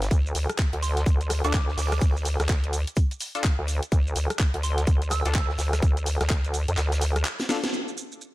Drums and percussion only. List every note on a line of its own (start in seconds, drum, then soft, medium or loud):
0.02 snare loud
0.02 closed hi-hat soft
0.02 shaker medium
0.02 shaker soft
0.11 kick loud
0.11 closed hi-hat medium
0.11 shaker medium
0.11 shaker soft
0.26 shaker soft
0.35 open hi-hat loud
0.35 shaker medium
0.50 cross-stick medium
0.50 closed hi-hat medium
0.50 shaker soft
0.58 kick loud
0.58 snare loud
0.58 clap loud
0.58 closed hi-hat medium
0.58 shaker medium
0.58 shaker soft
0.73 closed hi-hat soft
0.82 snare medium
0.82 open hi-hat medium
0.82 shaker medium
0.97 snare soft
0.97 closed hi-hat soft
0.97 shaker soft
1.06 kick loud
1.06 closed hi-hat medium
1.06 shaker loud
1.06 shaker soft
1.21 closed hi-hat soft
1.21 shaker soft
1.30 cross-stick medium
1.30 open hi-hat loud
1.30 shaker medium
1.44 closed hi-hat soft
1.44 shaker soft
1.53 kick loud
1.53 snare loud
1.53 clap loud
1.53 closed hi-hat medium
1.53 shaker medium
1.53 shaker soft
1.68 snare soft
1.78 open hi-hat medium
1.78 shaker medium
1.92 cross-stick medium
1.92 closed hi-hat medium
1.92 shaker soft
2.01 kick loud
2.01 closed hi-hat medium
2.01 shaker medium
2.01 shaker soft
2.17 shaker soft
2.25 open hi-hat loud
2.25 shaker medium
2.40 cross-stick medium
2.40 snare soft
2.40 closed hi-hat medium
2.40 shaker soft
2.49 kick loud
2.49 snare loud
2.49 clap loud
2.49 closed hi-hat medium
2.49 shaker loud
2.49 shaker soft
2.64 closed hi-hat soft
2.73 open hi-hat medium
2.73 shaker medium
2.87 closed hi-hat medium
2.87 shaker soft
2.96 kick loud
2.96 closed hi-hat medium
2.96 shaker medium
2.96 shaker soft
3.11 closed hi-hat soft
3.11 shaker soft
3.20 open hi-hat loud
3.20 shaker medium
3.35 snare soft
3.35 closed hi-hat medium
3.35 shaker soft
3.44 kick loud
3.44 snare loud
3.44 clap loud
3.44 closed hi-hat medium
3.44 shaker medium
3.44 shaker soft
3.68 open hi-hat medium
3.68 shaker medium
3.83 closed hi-hat soft
3.83 shaker soft
3.92 kick loud
3.92 closed hi-hat medium
3.92 shaker medium
3.92 shaker soft
4.07 shaker soft
4.16 open hi-hat loud
4.16 shaker medium
4.30 cross-stick medium
4.30 closed hi-hat medium
4.30 shaker soft
4.39 kick loud
4.39 snare loud
4.39 clap loud
4.39 closed hi-hat medium
4.39 shaker medium
4.39 shaker soft
4.54 closed hi-hat soft
4.63 snare soft
4.63 open hi-hat medium
4.63 shaker medium
4.77 snare soft
4.77 closed hi-hat medium
4.77 shaker soft
4.87 kick loud
4.87 closed hi-hat medium
4.87 shaker medium
4.87 shaker soft
5.02 closed hi-hat soft
5.02 shaker soft
5.10 cross-stick medium
5.10 open hi-hat loud
5.10 shaker medium
5.25 closed hi-hat soft
5.25 closed hi-hat medium
5.25 shaker soft
5.35 kick loud
5.35 snare loud
5.35 clap loud
5.35 closed hi-hat medium
5.35 shaker medium
5.35 shaker soft
5.49 snare soft
5.58 snare loud
5.58 open hi-hat medium
5.58 shaker medium
5.73 cross-stick medium
5.73 snare loud
5.73 closed hi-hat medium
5.73 shaker medium
5.73 shaker soft
5.82 kick loud
5.82 closed hi-hat medium
5.82 shaker medium
5.82 shaker soft
5.97 closed hi-hat soft
5.97 shaker soft
6.06 open hi-hat loud
6.06 shaker medium
6.20 cross-stick medium
6.20 snare medium
6.20 closed hi-hat medium
6.20 shaker soft
6.30 kick loud
6.30 snare loud
6.30 clap loud
6.30 closed hi-hat medium
6.30 shaker medium
6.30 shaker soft
6.45 closed hi-hat soft
6.45 shaker soft
6.54 open hi-hat medium
6.54 shaker medium
6.68 closed hi-hat medium
6.68 shaker soft
6.77 snare loud
6.77 clap medium
6.77 closed hi-hat medium
6.77 shaker medium
6.77 shaker soft
6.92 snare loud
6.92 closed hi-hat soft
6.92 shaker medium
6.92 shaker soft
7.01 snare loud
7.01 open hi-hat loud
7.01 shaker medium
7.16 cross-stick medium
7.16 closed hi-hat medium
7.16 shaker soft
7.25 clap loud
7.25 closed hi-hat medium
7.25 shaker medium
7.25 shaker soft
7.39 snare loud
7.39 snare medium
7.39 shaker medium
7.39 shaker soft
7.49 snare medium
7.49 open hi-hat medium
7.49 shaker medium
7.63 snare medium
7.63 closed hi-hat medium
7.63 shaker medium
7.63 shaker soft
7.74 shaker soft
7.88 shaker soft
7.97 shaker medium
8.12 shaker soft
8.20 shaker medium
8.20 shaker soft